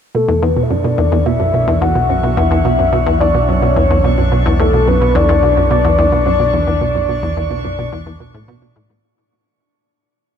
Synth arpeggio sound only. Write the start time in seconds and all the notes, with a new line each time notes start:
0.15 B2
0.28 E2
0.42 E2
0.57 B2
0.71 F#2
0.84 B2
0.98 E2
1.12 E2
1.26 B2
1.40 F#2
1.54 B2
1.68 E2
1.82 E2
1.95 B2
2.09 F#2
2.23 B2
2.37 E2
2.51 E2
2.65 B2
2.79 F#2
2.93 B2
3.06 E2
3.21 E2
3.34 B2
3.49 F#2
3.62 B2
3.76 E2
3.90 E2
4.04 B2
4.18 F#2
4.32 B2
4.46 E2
4.60 E2
4.73 B2
4.87 F#2
5.01 B2
5.15 E2
5.29 E2
5.43 B2
5.57 F#2
5.71 B2
5.84 E2
5.98 E2
6.12 B2
6.26 F#2
6.40 B2
6.53 E2
6.67 E2
6.81 B2
6.95 F#2
7.09 B2
7.23 E2
7.37 E2
7.51 B2
7.65 F#2
7.79 B2
7.92 E2
8.06 E2
8.20 B2
8.34 A2
8.48 B2
8.62 B2
8.76 A2
8.90 A2